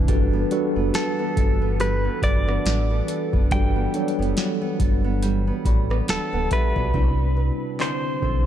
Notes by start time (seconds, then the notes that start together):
Already playing: E3 C4 D4 E4 B4 D5
0.08 G1 G3 D4 F#4 A4 B4, kick, closed hi-hat
0.33 B3
0.51 G3 D4 F#4 A4 B4, closed hi-hat
0.76 F#1 B3
0.94 F#4 A4, snare, closed hi-hat
1.19 B3
1.37 G1 A4, kick, closed hi-hat
1.62 B3
1.80 G3 B4, closed hi-hat
2.05 B3
2.22 G1 F#4 D5, kick, closed hi-hat
2.48 B3, cross-stick
2.65 A1, snare, closed hi-hat
2.90 B3
3.08 A4, closed hi-hat
3.33 F#1 B3, kick
3.51 G1 G3 D4 F#4 A4 D5 G5, kick, closed hi-hat
3.76 B3
3.94 F#3 G3 D4 A4 C#5, closed hi-hat
4.02 D5
4.08 closed hi-hat
4.19 F#1 B3, closed hi-hat
4.37 F#4, snare, closed hi-hat
4.62 B3
4.80 G1 A4, kick, closed hi-hat
5.04 B3
5.22 G3, closed hi-hat
5.47 B3
5.65 A1 F#4 D5 B5, kick, closed hi-hat
5.90 B3, cross-stick
6.08 D1 F#4 A4 A5, snare, closed hi-hat
6.33 D1 B3 A4 F#5
6.51 G4 A4 B4 E5, kick, closed hi-hat
6.76 B1 B3 F#4 D5, kick
6.94 C2 C3 G3 C4 D4 E4 B4, kick
7.37 B4
7.80 D3 C4 D4 E4 C5 D5, clap
8.22 B1 A4, kick